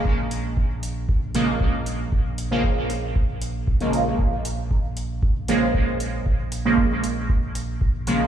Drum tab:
HH |--o---o---o---o-|--o---o---o--oo-|--o---o---o---o-|--o---o---o---o-|
BD |o---o---o---o---|o---o---o---o---|o---o---o---o---|o---o---o---o---|